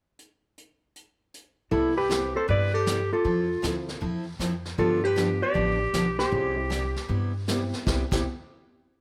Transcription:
0.19 closed hi-hat
0.58 closed hi-hat
0.96 closed hi-hat
1.34 closed hi-hat
1.71 upright bass C2, steel-string acoustic guitar C3 G3 B3 E4 G4, hollow-body jazz guitar E4 A4, clarinet E4, brush sweep, kick
1.97 clarinet G4, hollow-body jazz guitar G4 B4
2.09 steel-string acoustic guitar C3 G3 B3 E4 G4, upright piano C4 E4 G4 B4, snare, hi-hat pedal
2.35 clarinet A4, hollow-body jazz guitar A4 C5
2.48 upright bass G2, steel-string acoustic guitar C3 G3 B3 E4 G4, clarinet B4, hollow-body jazz guitar B4 D5, brush sweep, kick
2.74 clarinet G4, hollow-body jazz guitar A4 C5
2.86 steel-string acoustic guitar C3 G3 B3 E4 G4, snare, hi-hat pedal
3.13 hollow-body jazz guitar F4 A4, clarinet F4
3.24 upright bass F2, steel-string acoustic guitar F3 C4 E4 A4, brush sweep, kick
3.62 upright bass D2, steel-string acoustic guitar F3 C4 E4 A4, upright piano C4 E4 F4 A4, snare, hi-hat pedal
3.88 snare
4.01 upright bass E2, steel-string acoustic guitar F3 C4 E4 A4, brush sweep, kick
4.39 upright bass F2, steel-string acoustic guitar F3 C4 E4 A4, snare, hi-hat pedal
4.65 snare
4.78 upright bass G2, steel-string acoustic guitar D3 F3 B3 D4 G4, hollow-body jazz guitar F4 A4, clarinet F4, brush sweep, kick
5.04 hollow-body jazz guitar G4 B4, clarinet G4
5.16 steel-string acoustic guitar D3 F3 B3 D4 G4, upright piano B3 D4 F4 G4, snare, hi-hat pedal
5.42 clarinet G4, hollow-body jazz guitar B4 D5
5.54 upright bass A1, steel-string acoustic guitar D3 F3 B3 D4 G4, brush sweep, kick
5.94 upright bass B1, steel-string acoustic guitar D3 F3 B3 D4 G4, snare, hi-hat pedal
6.19 hollow-body jazz guitar G4 C5, clarinet G4, snare
6.31 upright bass C2, steel-string acoustic guitar C3 G3 B3 E4 G4, upright piano C4 C#4 F4 G#4, brush sweep, kick
6.56 upright piano G3 C4 E4 G4
6.70 steel-string acoustic guitar C3 G3 B3 E4 G4, snare, hi-hat pedal
6.96 snare
7.08 upright bass G2, steel-string acoustic guitar C3 G3 B3 E4 G4, brush sweep, kick
7.48 steel-string acoustic guitar C3 G3 B3 E4 G4, upright piano B3 C4 E4 G4, snare, hi-hat pedal
7.73 snare
7.85 upright bass C2, steel-string acoustic guitar C3 G3 B3 E4 G4, upright piano B3 C4 E4 G4, kick, snare
8.11 upright bass C2, steel-string acoustic guitar C3 G3 B3 E4 G4, upright piano B3 C4 E4 G4, kick, snare, crash

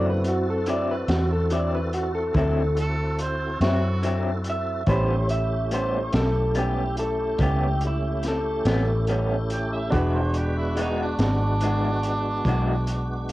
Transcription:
Already playing: fingered electric bass F#2, tonewheel organ C#3 A#3 E4 F#4, upright piano C4 E4 F#4 A4
0.10 clean electric guitar B4
0.24 tonewheel organ C4 E4 F#4 A4, closed hi-hat
0.28 clean electric guitar F#4
0.50 clean electric guitar A4
0.66 clean electric guitar D3 F#3 C4 E4 D5, closed hi-hat
0.91 clean electric guitar B4
1.08 fingered electric bass E2, clean electric guitar F#4, snare, closed hi-hat
1.33 clean electric guitar A4
1.50 clean electric guitar D3 F#3 C4 E4 D5, closed hi-hat
1.75 clean electric guitar B4
1.93 clean electric guitar F#4, closed hi-hat
2.15 clean electric guitar A4
2.34 fingered electric bass D2, clean electric guitar D3 F#3 C4 E4, kick, closed hi-hat
2.39 clean electric guitar A4
2.77 harmonica A4, closed hi-hat
3.19 harmonica C5, closed hi-hat
3.61 fingered electric bass F#2, clean electric guitar F#3 C4 E4, harmonica F#4, snare, closed hi-hat
4.03 clean electric guitar D3 F#3 C4 E4, closed hi-hat
4.44 closed hi-hat
4.50 clean electric guitar E5
4.87 fingered electric bass A1, clean electric guitar A2 G3 B3 C#4 C5, upright piano C#4 E4 G4 B5, tonewheel organ E4, kick, closed hi-hat
4.91 tonewheel organ A3 C#4 G4
5.29 clean electric guitar E5, closed hi-hat
5.71 clean electric guitar A2 G3 B3 C#4 C5, closed hi-hat
6.12 fingered electric bass B1, clean electric guitar A4, snare, closed hi-hat
6.55 clean electric guitar A2 G3 B3 C#4 G4, closed hi-hat
6.97 clean electric guitar A4, closed hi-hat
7.39 fingered electric bass C#2, clean electric guitar A2 G3 B3 C#4, kick, closed hi-hat
7.43 clean electric guitar G4
7.81 closed hi-hat
7.87 clean electric guitar E4
8.23 snare, closed hi-hat
8.28 clean electric guitar A4
8.65 fingered electric bass A1, clean electric guitar G3 B3 C#4, snare, closed hi-hat
9.07 clean electric guitar A2 G3 B3 C#4, closed hi-hat
9.50 harmonica G5, closed hi-hat
9.73 harmonica E5
9.90 fingered electric bass E1, clean electric guitar E3 G#3 D4, tonewheel organ G#3 B3 D4 F#4, upright piano D4 F#4 G#4 B4, harmonica D5, kick, closed hi-hat
9.95 clean electric guitar F#4
10.14 harmonica C5
10.34 harmonica G4, closed hi-hat
10.58 harmonica E4
10.76 clean electric guitar E3 G#3 D4 F#4, closed hi-hat
10.81 harmonica D#4
11.02 harmonica D4
11.19 fingered electric bass G#1, snare, closed hi-hat
11.23 harmonica D4
11.61 clean electric guitar E3 G#3 D4, closed hi-hat
11.65 clean electric guitar F#4
12.03 closed hi-hat
12.45 fingered electric bass B1, clean electric guitar E3 G#3 D4 F#4, kick, closed hi-hat
12.87 closed hi-hat
13.29 closed hi-hat

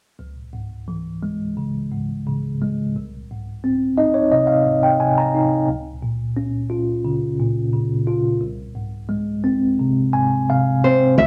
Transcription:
0.19 tine electric piano C#2
0.53 tine electric piano G#2
0.88 tine electric piano E3
1.23 tine electric piano G#3
1.57 tine electric piano C#3
1.92 tine electric piano G#2
2.27 tine electric piano C#3
2.62 tine electric piano G#3
2.96 tine electric piano C2
3.31 tine electric piano G#2
3.64 tine electric piano C4
3.97 tine electric piano D#4 D#5
4.14 tine electric piano C#5
4.31 tine electric piano C3 D#5
4.47 tine electric piano F5
4.66 tine electric piano G#2
4.83 tine electric piano G5
5.00 tine electric piano C3 G#5
5.18 tine electric piano A#5
5.35 tine electric piano D#4
5.68 tine electric piano C#2
6.02 tine electric piano A#2
6.37 tine electric piano C#4
6.70 tine electric piano F4
7.05 tine electric piano C#3
7.39 tine electric piano A#2
7.73 tine electric piano C#3
8.07 tine electric piano F4
8.41 tine electric piano C2
8.75 tine electric piano G#2
9.09 tine electric piano G#3
9.44 tine electric piano C4
9.79 tine electric piano C3
10.13 tine electric piano G#2 G#5
10.50 tine electric piano C3 F5
10.84 tine electric piano C4, nylon-string guitar C5
11.17 upright bass C#2, tine electric piano C#3, nylon-string guitar E5

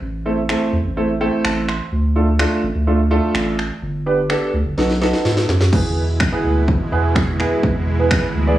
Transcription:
0.01 analog synth bass A1
0.25 grand piano A3 C4 E4 A4
0.49 grand piano A3 C4 E4 A4, finger snap
0.73 analog synth bass E2
0.85 analog synth bass A1
0.97 grand piano A3 C4 E4 A4
1.20 grand piano A3 C4 E4 A4 G5
1.44 analog synth bass A1, grand piano A5, finger snap
1.68 grand piano C6, finger snap
1.92 analog synth bass D2
2.15 grand piano A3 D4 F4 A4
2.39 grand piano A3 D4 F4 A4, finger snap
2.63 analog synth bass A1
2.75 analog synth bass D2
2.87 grand piano A3 D4 F4 A4
3.11 grand piano A3 D4 F4 A4
3.35 analog synth bass A1, finger snap
3.59 finger snap
3.82 analog synth bass G1
4.06 grand piano B3 D4 G4 B4
4.30 grand piano B3 D4 G4 A4, finger snap
4.54 analog synth bass D2
4.66 analog synth bass G1
4.78 analog synth bass B1, grand piano B3 D#4 F#4 A4, snare
4.90 snare
5.01 grand piano B3 D#4 F#4 A4, snare
5.13 snare
5.25 analog synth bass G#2, snare
5.37 snare
5.49 analog synth bass F#2, snare
5.61 snare
5.72 analog synth bass E2, supersaw synth B2 E3 G#3 E4, grand piano B3 E4 G#4 B4, kick, crash
6.20 finger snap, kick
6.32 grand piano B3 E4 G#4 B4
6.44 analog synth bass D2
6.68 kick
6.92 analog synth bass E2, grand piano B3 E4 G#4 B4
7.16 finger snap, kick
7.40 grand piano B3 E4 G#4 B4, finger snap
7.63 analog synth bass E2, kick
7.99 grand piano B3 E4 G#4 B4
8.11 finger snap, kick
8.35 analog synth bass D2
8.47 grand piano B3 E4 G#4 D5

